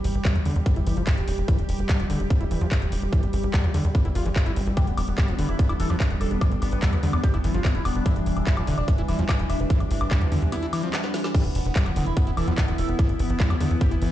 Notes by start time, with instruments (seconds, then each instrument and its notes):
Already playing: ambient pad G3 G4
0.04 analog synth bass A1, open hi-hat
0.15 analog synth bass A1, closed hi-hat
0.25 acid bass G3, kick, clap, closed hi-hat
0.35 analog synth bass E2, acid bass F3, closed hi-hat
0.45 analog synth bass E2, acid bass D3, open hi-hat
0.56 analog synth bass E2, closed hi-hat
0.66 acid bass B3, kick, closed hi-hat
0.76 analog synth bass G1, acid bass E4, closed hi-hat
0.87 analog synth bass G1, acid bass E3, open hi-hat
0.97 analog synth bass G1, acid bass F3, closed hi-hat
1.07 kick, clap, closed hi-hat
1.17 analog synth bass E1, closed hi-hat
1.28 analog synth bass E1, open hi-hat
1.38 analog synth bass E1, closed hi-hat
1.48 acid bass E3, kick, closed hi-hat
1.58 analog synth bass E1, closed hi-hat
1.69 analog synth bass E1, open hi-hat
1.79 analog synth bass E1, closed hi-hat
1.89 acid bass G3, kick, clap, closed hi-hat
2.00 analog synth bass E1, acid bass F3, closed hi-hat
2.10 analog synth bass E1, acid bass D3, open hi-hat
2.20 analog synth bass E1, closed hi-hat
2.30 acid bass B3, kick, closed hi-hat
2.41 analog synth bass E1, acid bass E4, closed hi-hat
2.51 analog synth bass E1, acid bass E3, open hi-hat
2.61 analog synth bass E2, acid bass F3, closed hi-hat
2.71 kick, clap, closed hi-hat
2.82 analog synth bass E1, closed hi-hat
2.92 analog synth bass E1, open hi-hat
3.02 analog synth bass E1, closed hi-hat
3.13 acid bass E3, kick, closed hi-hat
3.23 analog synth bass A1, closed hi-hat
3.33 analog synth bass A1, open hi-hat
3.43 analog synth bass A1, closed hi-hat
3.54 acid bass G3, kick, clap, closed hi-hat
3.64 analog synth bass E2, acid bass F3, closed hi-hat
3.74 analog synth bass E2, acid bass D3, open hi-hat
3.84 analog synth bass E2, closed hi-hat
3.95 acid bass B3, kick, closed hi-hat
4.05 analog synth bass G1, acid bass E4, closed hi-hat
4.15 analog synth bass G1, acid bass F4, open hi-hat
4.26 analog synth bass G1, acid bass E3, closed hi-hat
4.36 kick, clap, closed hi-hat
4.46 analog synth bass A1, acid bass E4, closed hi-hat
4.56 analog synth bass A1, open hi-hat
4.67 analog synth bass A1, closed hi-hat
4.77 acid bass E3, ambient pad D4, analog synth lead G4, kick, closed hi-hat, high woodblock
4.87 analog synth bass E1, analog synth lead B3, closed hi-hat
4.97 analog synth bass E1, analog synth lead B3, open hi-hat, high woodblock
5.08 analog synth bass E1, analog synth lead B3, closed hi-hat
5.18 acid bass G3, analog synth lead G4, kick, clap, closed hi-hat, high woodblock
5.28 analog synth bass E1, acid bass F3, analog synth lead B3, closed hi-hat
5.39 analog synth bass E1, acid bass D3, analog synth lead B3, open hi-hat
5.49 analog synth bass E1, analog synth lead E4, closed hi-hat, high woodblock
5.59 analog synth lead B3, acid bass B3, kick, closed hi-hat
5.69 analog synth bass E1, analog synth lead B3, acid bass E4, closed hi-hat, high woodblock
5.80 analog synth bass E1, acid bass E3, analog synth lead A4, open hi-hat
5.90 analog synth bass E2, acid bass F3, analog synth lead B3, closed hi-hat, high woodblock
6.00 analog synth lead B3, kick, clap, closed hi-hat
6.10 analog synth bass E1, analog synth lead B3, closed hi-hat
6.21 analog synth bass E1, analog synth lead A4, open hi-hat, high woodblock
6.31 analog synth bass E1, analog synth lead B3, closed hi-hat
6.41 acid bass E3, analog synth lead B3, kick, closed hi-hat, high woodblock
6.52 analog synth bass A1, closed hi-hat
6.62 analog synth bass A1, analog synth lead B3, open hi-hat, high woodblock
6.72 analog synth bass A1, analog synth lead B3, closed hi-hat
6.82 acid bass G3, analog synth lead E4, kick, clap, closed hi-hat
6.93 analog synth bass E2, acid bass F3, analog synth lead B3, closed hi-hat, high woodblock
7.03 analog synth bass E2, acid bass D3, analog synth lead B3, open hi-hat
7.13 analog synth bass E2, analog synth lead B3, closed hi-hat, high woodblock
7.24 acid bass B3, analog synth lead G4, kick, closed hi-hat
7.34 analog synth bass G1, analog synth lead B3, acid bass E4, closed hi-hat, high woodblock
7.44 analog synth bass G1, acid bass E3, analog synth lead B3, open hi-hat
7.54 analog synth bass G1, acid bass F3, analog synth lead F4, closed hi-hat
7.65 analog synth lead B3, kick, clap, closed hi-hat, high woodblock
7.75 analog synth bass E1, analog synth lead E4, closed hi-hat
7.85 analog synth bass E1, analog synth lead B3, open hi-hat, high woodblock
7.95 analog synth bass E1, analog synth lead B3, closed hi-hat
8.06 acid bass E3, analog synth lead E4, kick, closed hi-hat, high woodblock
8.16 analog synth bass E1, analog synth lead E3, closed hi-hat
8.26 analog synth bass E1, analog synth lead E3, open hi-hat
8.37 analog synth bass E1, analog synth lead E3, closed hi-hat, high woodblock
8.47 acid bass G3, analog synth lead E4, kick, clap, closed hi-hat
8.57 analog synth bass E1, analog synth lead E3, acid bass F3, closed hi-hat, high woodblock
8.67 analog synth bass E1, acid bass D3, analog synth lead E3, open hi-hat
8.78 analog synth bass E1, analog synth lead D4, closed hi-hat, high woodblock
8.88 analog synth lead E3, acid bass B3, kick, closed hi-hat
8.98 analog synth bass E1, analog synth lead E3, acid bass E4, closed hi-hat
9.08 analog synth bass E1, acid bass E3, analog synth lead E4, open hi-hat, high woodblock
9.19 analog synth bass E2, analog synth lead E3, acid bass F3, closed hi-hat
9.29 analog synth lead E3, kick, clap, closed hi-hat, high woodblock
9.39 analog synth bass E1, analog synth lead E3, closed hi-hat
9.50 analog synth bass E1, analog synth lead E4, open hi-hat, high woodblock
9.60 analog synth bass E1, analog synth lead E3, closed hi-hat
9.70 acid bass E3, analog synth lead E3, kick, closed hi-hat
9.80 analog synth bass A1, closed hi-hat, high woodblock
9.91 analog synth bass A1, analog synth lead E3, open hi-hat
10.01 analog synth bass A1, analog synth lead E3, closed hi-hat, high woodblock
10.11 acid bass G3, analog synth lead D4, kick, clap, closed hi-hat
10.21 analog synth bass E2, analog synth lead E3, acid bass F3, closed hi-hat, high woodblock
10.32 analog synth bass E2, acid bass D3, analog synth lead E3, open hi-hat
10.42 analog synth bass E2, analog synth lead E3, closed hi-hat
10.52 acid bass B3, analog synth lead E4, closed hi-hat, high woodblock
10.63 analog synth lead E3, acid bass E4, closed hi-hat
10.73 analog synth lead E3, acid bass E3, open hi-hat, high woodblock
10.83 acid bass F3, analog synth lead C4, closed hi-hat
10.93 analog synth lead E3, snare, clap, closed hi-hat, high woodblock
11.04 analog synth lead B3, snare, closed hi-hat
11.14 analog synth lead E3, snare, open hi-hat
11.24 analog synth lead E3, snare, closed hi-hat, high woodblock
11.34 ambient pad E3 E4, acid bass E3, analog synth lead G4, kick, closed hi-hat, crash
11.45 analog synth bass E1, analog synth lead B3, closed hi-hat
11.55 analog synth bass E1, analog synth lead B3, open hi-hat
11.65 analog synth bass E1, analog synth lead B3, closed hi-hat
11.76 acid bass G3, analog synth lead G4, kick, clap, closed hi-hat
11.86 analog synth bass E1, acid bass F3, analog synth lead B3, closed hi-hat, high woodblock
11.96 analog synth bass E1, acid bass D3, analog synth lead B3, open hi-hat
12.06 analog synth bass E1, analog synth lead E4, closed hi-hat
12.17 acid bass B3, analog synth lead B3, kick, closed hi-hat
12.27 analog synth bass E1, analog synth lead B3, acid bass E4, closed hi-hat
12.37 analog synth bass E1, acid bass E3, analog synth lead A4, open hi-hat, high woodblock
12.48 analog synth bass E2, acid bass F3, analog synth lead B3, closed hi-hat
12.58 analog synth lead B3, kick, clap, closed hi-hat
12.68 analog synth bass E1, analog synth lead B3, closed hi-hat
12.78 analog synth bass E1, analog synth lead A4, open hi-hat
12.89 analog synth bass E1, analog synth lead B3, closed hi-hat
12.99 acid bass E3, analog synth lead B3, kick, closed hi-hat, high woodblock
13.09 analog synth bass A1, closed hi-hat
13.19 analog synth bass A1, analog synth lead B3, open hi-hat
13.30 analog synth bass A1, analog synth lead B3, closed hi-hat
13.40 acid bass G3, analog synth lead E4, kick, clap, closed hi-hat
13.50 analog synth bass E2, acid bass F3, analog synth lead B3, closed hi-hat, high woodblock
13.61 analog synth bass E2, acid bass D3, analog synth lead B3, open hi-hat
13.71 analog synth bass E2, analog synth lead B3, closed hi-hat
13.81 acid bass B3, analog synth lead G4, kick, closed hi-hat
13.91 analog synth bass G1, analog synth lead B3, acid bass E4, closed hi-hat
14.02 analog synth bass G1, acid bass E3, analog synth lead B3, open hi-hat